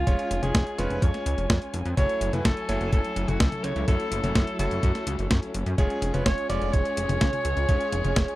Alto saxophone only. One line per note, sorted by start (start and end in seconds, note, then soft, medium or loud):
0.00 0.39 F4 loud
0.43 0.80 G#4 loud
0.78 1.04 B4 loud
1.02 1.74 C#5 loud
1.97 2.35 C#5 loud
2.33 2.46 B4 loud
2.45 2.92 A4 loud
2.92 3.30 A4 loud
3.28 3.42 F#4 medium
3.40 3.65 A4 loud
3.64 3.87 C#5 loud
3.88 4.55 A4 loud
4.59 5.27 A4 medium
5.78 6.15 G#4 loud
6.14 6.25 B4 loud
6.25 6.48 C#5 loud
6.49 6.75 D5 loud
6.73 8.36 C#5 loud